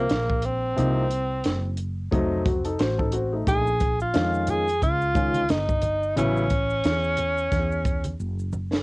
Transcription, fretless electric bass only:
0, 0, Header, 1, 2, 480
1, 0, Start_track
1, 0, Tempo, 674157
1, 552, Time_signature, 4, 2, 24, 8
1, 6286, End_track
2, 0, Start_track
2, 0, Title_t, "Fretless electric bass"
2, 0, Program_c, 0, 35
2, 74, Note_on_c, 0, 34, 79
2, 529, Note_off_c, 0, 34, 0
2, 555, Note_on_c, 0, 36, 103
2, 1009, Note_off_c, 0, 36, 0
2, 1036, Note_on_c, 0, 30, 91
2, 1490, Note_off_c, 0, 30, 0
2, 1515, Note_on_c, 0, 29, 94
2, 1969, Note_off_c, 0, 29, 0
2, 1993, Note_on_c, 0, 33, 82
2, 2448, Note_off_c, 0, 33, 0
2, 2473, Note_on_c, 0, 34, 97
2, 2928, Note_off_c, 0, 34, 0
2, 2954, Note_on_c, 0, 41, 85
2, 3409, Note_off_c, 0, 41, 0
2, 3435, Note_on_c, 0, 37, 84
2, 3914, Note_on_c, 0, 31, 92
2, 3925, Note_off_c, 0, 37, 0
2, 4369, Note_off_c, 0, 31, 0
2, 4396, Note_on_c, 0, 33, 106
2, 4850, Note_off_c, 0, 33, 0
2, 4876, Note_on_c, 0, 40, 96
2, 5330, Note_off_c, 0, 40, 0
2, 5355, Note_on_c, 0, 40, 85
2, 5809, Note_off_c, 0, 40, 0
2, 5836, Note_on_c, 0, 30, 81
2, 6286, Note_off_c, 0, 30, 0
2, 6286, End_track
0, 0, End_of_file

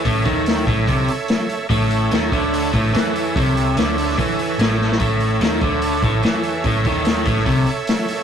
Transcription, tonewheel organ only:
0, 0, Header, 1, 2, 480
1, 0, Start_track
1, 0, Tempo, 411805
1, 68, Time_signature, 4, 2, 24, 8
1, 9596, End_track
2, 0, Start_track
2, 0, Title_t, "Tonewheel organ"
2, 0, Program_c, 0, 16
2, 0, Note_on_c, 0, 69, 64
2, 0, Note_on_c, 0, 73, 60
2, 0, Note_on_c, 0, 76, 61
2, 1944, Note_off_c, 0, 73, 0
2, 1946, Note_off_c, 0, 69, 0
2, 1948, Note_off_c, 0, 76, 0
2, 1988, Note_on_c, 0, 73, 67
2, 1989, Note_on_c, 0, 76, 68
2, 1998, Note_on_c, 0, 69, 63
2, 5790, Note_off_c, 0, 73, 0
2, 5792, Note_off_c, 0, 76, 0
2, 5796, Note_off_c, 0, 69, 0
2, 5824, Note_on_c, 0, 76, 62
2, 5836, Note_on_c, 0, 73, 64
2, 5842, Note_on_c, 0, 69, 60
2, 9596, Note_off_c, 0, 69, 0
2, 9596, Note_off_c, 0, 73, 0
2, 9596, Note_off_c, 0, 76, 0
2, 9596, End_track
0, 0, End_of_file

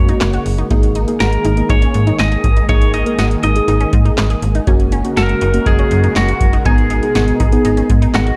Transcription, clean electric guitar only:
0, 0, Header, 1, 2, 480
1, 0, Start_track
1, 0, Key_signature, 5, "minor"
1, 0, Tempo, 495868
1, 684, Time_signature, 4, 2, 24, 8
1, 8097, End_track
2, 0, Start_track
2, 0, Title_t, "Clean electric guitar"
2, 0, Program_c, 0, 27
2, 0, Note_on_c, 0, 73, 91
2, 406, Note_off_c, 0, 73, 0
2, 1165, Note_on_c, 0, 70, 94
2, 1642, Note_off_c, 0, 70, 0
2, 1646, Note_on_c, 0, 73, 100
2, 2092, Note_off_c, 0, 73, 0
2, 2125, Note_on_c, 0, 75, 109
2, 2601, Note_off_c, 0, 75, 0
2, 2605, Note_on_c, 0, 73, 106
2, 2841, Note_off_c, 0, 73, 0
2, 2845, Note_on_c, 0, 75, 100
2, 3076, Note_off_c, 0, 75, 0
2, 3087, Note_on_c, 0, 75, 104
2, 3152, Note_off_c, 0, 75, 0
2, 3327, Note_on_c, 0, 75, 94
2, 4247, Note_off_c, 0, 75, 0
2, 5008, Note_on_c, 0, 70, 110
2, 5486, Note_on_c, 0, 68, 102
2, 5500, Note_off_c, 0, 70, 0
2, 5931, Note_off_c, 0, 68, 0
2, 5967, Note_on_c, 0, 66, 93
2, 6412, Note_off_c, 0, 66, 0
2, 6447, Note_on_c, 0, 68, 92
2, 7847, Note_off_c, 0, 68, 0
2, 7888, Note_on_c, 0, 66, 85
2, 8097, Note_off_c, 0, 66, 0
2, 8097, End_track
0, 0, End_of_file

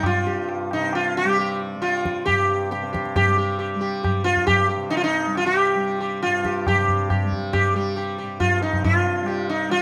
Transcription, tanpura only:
0, 0, Header, 1, 2, 480
1, 0, Start_track
1, 0, Tempo, 442804
1, 1021, Time_signature, 5, 2, 24, 8
1, 5333, Tempo, 434468
1, 10746, End_track
2, 0, Start_track
2, 0, Title_t, "Tanpura"
2, 0, Program_c, 0, 104
2, 0, Note_on_c, 0, 43, 57
2, 0, Note_on_c, 0, 48, 56
2, 0, Note_on_c, 0, 55, 61
2, 245, Note_off_c, 0, 43, 0
2, 249, Note_on_c, 0, 43, 56
2, 799, Note_off_c, 0, 48, 0
2, 803, Note_on_c, 0, 48, 61
2, 1348, Note_off_c, 0, 55, 0
2, 1348, Note_on_c, 0, 55, 62
2, 1904, Note_off_c, 0, 55, 0
2, 1904, Note_on_c, 0, 55, 55
2, 2441, Note_off_c, 0, 43, 0
2, 2445, Note_on_c, 0, 43, 58
2, 2980, Note_off_c, 0, 48, 0
2, 2985, Note_on_c, 0, 48, 52
2, 3534, Note_off_c, 0, 55, 0
2, 3534, Note_on_c, 0, 55, 53
2, 4070, Note_off_c, 0, 55, 0
2, 4070, Note_on_c, 0, 55, 64
2, 4619, Note_off_c, 0, 43, 0
2, 4623, Note_on_c, 0, 43, 56
2, 5161, Note_off_c, 0, 48, 0
2, 5165, Note_on_c, 0, 48, 62
2, 5717, Note_off_c, 0, 55, 0
2, 5717, Note_on_c, 0, 55, 56
2, 6254, Note_off_c, 0, 55, 0
2, 6254, Note_on_c, 0, 55, 55
2, 6805, Note_off_c, 0, 43, 0
2, 6810, Note_on_c, 0, 43, 57
2, 7343, Note_off_c, 0, 48, 0
2, 7348, Note_on_c, 0, 48, 54
2, 7888, Note_off_c, 0, 55, 0
2, 7888, Note_on_c, 0, 55, 56
2, 8455, Note_off_c, 0, 55, 0
2, 8455, Note_on_c, 0, 55, 63
2, 8990, Note_off_c, 0, 43, 0
2, 8995, Note_on_c, 0, 43, 51
2, 9524, Note_off_c, 0, 48, 0
2, 9529, Note_on_c, 0, 48, 50
2, 10088, Note_off_c, 0, 55, 0
2, 10088, Note_on_c, 0, 55, 56
2, 10605, Note_off_c, 0, 55, 0
2, 10605, Note_on_c, 0, 55, 59
2, 10746, Note_off_c, 0, 43, 0
2, 10746, Note_off_c, 0, 48, 0
2, 10746, Note_off_c, 0, 55, 0
2, 10746, End_track
0, 0, End_of_file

